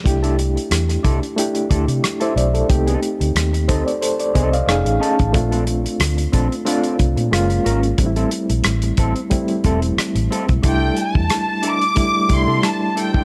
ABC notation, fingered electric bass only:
X:1
M:4/4
L:1/16
Q:"Swing 16ths" 1/4=91
K:Cmix
V:1 name="Fingered electric bass" clef=bass
C,,4 E,,2 C,, z3 D,, C, z2 =B,,,2 | C,,2 z D,, _E,,2 D,, z3 C,,2 F,,, A,,, z A,,, | B,,,4 D,,2 B,,, z3 C,, B,, ^F,,,2 _A,,,2 | A,,,2 z B,,, A,,,2 A,,, z3 E,,,2 z A,,, z =B,,, |
C,,2 z E,, z6 C,, C, z4 |]